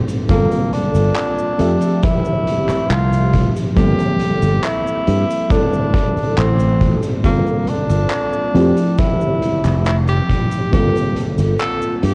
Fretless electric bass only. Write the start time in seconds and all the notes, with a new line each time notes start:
0.29 G1
0.94 G1
1.59 F2
2.69 muted fretless electric bass stroke
2.90 C2
3.77 G1
4.42 G1
5.07 G2
6.16 muted fretless electric bass stroke
6.37 A1
7.24 G1
7.90 G1
8.55 F2
9.64 F1
10.73 G1
11.38 G1
12.03 G2